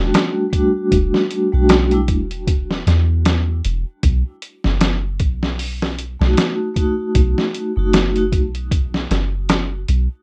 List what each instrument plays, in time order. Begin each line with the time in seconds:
Already playing: 808-style bass E1, vibraphone G3 A3 D4
0.00 vibraphone F#4
0.14 snare, closed hi-hat
0.50 vibraphone G3 A3 D4, kick, closed hi-hat
0.55 vibraphone F#4
0.92 808-style bass E1, kick, closed hi-hat
1.14 snare
1.31 closed hi-hat
1.52 808-style bass B1, vibraphone G3 A3 D4 F#4
1.69 snare, closed hi-hat
1.91 vibraphone G3 A3 D4 E4, closed hi-hat
2.08 808-style bass E1, kick, closed hi-hat
2.31 closed hi-hat
2.47 kick, closed hi-hat
2.71 snare
2.87 808-style bass E2, snare, closed hi-hat
3.25 snare, closed hi-hat
3.65 808-style bass E1, closed hi-hat
4.03 808-style bass B1, kick, closed hi-hat
4.42 closed hi-hat
4.64 808-style bass F#1, snare
4.81 snare, closed hi-hat
5.20 808-style bass B1, kick, closed hi-hat
5.43 snare
5.59 open hi-hat
5.82 snare
5.99 closed hi-hat
6.20 808-style bass B1, vibraphone A3 D#4 F#4, snare
6.37 snare, closed hi-hat
6.74 vibraphone A3 D#4, kick, closed hi-hat
6.79 vibraphone F#4
7.15 808-style bass B1, kick, closed hi-hat
7.38 snare
7.54 closed hi-hat
7.76 808-style bass F#1, vibraphone A3 D#4 F#4
7.93 snare, closed hi-hat
8.16 vibraphone A3 D#4 F#4, closed hi-hat
8.32 808-style bass B1, kick, closed hi-hat
8.55 closed hi-hat
8.71 kick, closed hi-hat
8.94 snare
9.11 808-style bass F#1, snare, closed hi-hat
9.49 snare, closed hi-hat
9.88 808-style bass B1, closed hi-hat